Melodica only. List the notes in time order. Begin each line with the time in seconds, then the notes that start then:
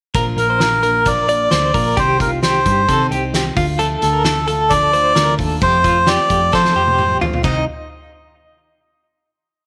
0.38 A#4
1.07 D5
1.99 C5
2.21 A#4
2.43 C5
4.02 A4
4.70 D5
5.63 C5
6.07 D5
6.54 C5
7.44 D#5